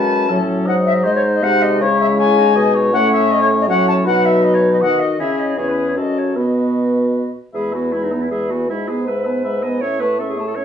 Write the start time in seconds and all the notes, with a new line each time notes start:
Already playing: F#2 G#3 C#4 B4 A5
0.29 A2 F#3 C#4 A4
0.48 F#3
0.66 G#2 D#4 D#5 F#5
0.86 E5
1.04 G#3 C5 D#5
1.15 C#5
1.33 D#5
1.43 C3 G#3 F#5
1.62 D#5
1.80 C#3 E4 C#5
1.99 E5
2.17 E4 C#5 G#5
2.38 D#4
2.56 B2 D#5
2.75 C#5
2.93 A2 A3 C#4 F#5
3.13 E5
3.31 D#5
3.41 C#5
3.60 D#5
3.68 F#3 C#4 C#5 F#5
3.87 A5
4.05 B2 F#3 D#4 B4 F#5
4.25 E5
4.43 B4 D#5
4.53 C#5
4.71 D#5
4.81 D#3 F#4 D#5 F#5
4.99 D#5
5.19 C#3 C#4 E4 G#4 E5
5.39 D#5
5.57 E2 C#4 E4 G#4 C#5
5.68 B4
5.88 C#5
5.96 F#2 C#4 F#4 A4 D#5
6.17 C#5
6.36 B2 B3 F#4 B4 D#5
7.54 E2 G#3 G#4 E5 B5
7.72 B3 F#4 B4 G#5
7.93 G#3 E4 E5 B5
8.03 D#4
8.12 B3 B4 G#5
8.22 E4
8.30 G#3 G#4 E5 B5
8.50 B3 F#4 B4 G#5
8.69 G#2 G#3 E4 E5 B5
8.88 B3 G#4 B4 G#5
9.07 G#3 B4 E5 B5
9.25 B3 B4 G#5
9.44 G#3 E5 B5
9.63 B3 B4 D#5 G#5
9.82 A2 C#4 C#5 E5 C#6
10.01 A3 B4 C#5 A5
10.20 C#4 A4 E5 C#6
10.29 G#4
10.37 A3 C#5 A5
10.48 A4
10.56 C#4 C#5 E5 C#6